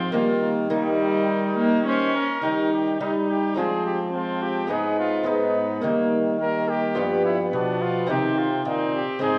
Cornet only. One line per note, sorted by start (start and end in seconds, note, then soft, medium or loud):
0.00 0.13 F4 medium
0.14 0.51 F4 medium
0.71 1.82 D#4 medium
1.87 2.16 C5 medium
2.15 2.71 A#4 medium
2.72 3.00 G4 medium
3.01 3.14 D#4 medium
3.29 3.56 G4 medium
3.56 3.85 G#4 medium
3.86 3.99 G4 medium
4.14 4.44 F4 medium
4.42 4.72 G4 medium
4.71 4.98 G#4 medium
4.99 5.29 F4 medium
5.27 6.12 D#4 medium
6.40 6.70 A#4 medium
6.69 7.25 G4 medium
7.25 7.38 E4 medium
7.53 7.83 D4 medium
7.82 8.09 F4 medium
8.10 8.40 G4 medium
8.38 8.65 F4 medium
8.66 8.93 D#4 medium
8.94 9.21 G4 medium
9.22 9.38 G#4 medium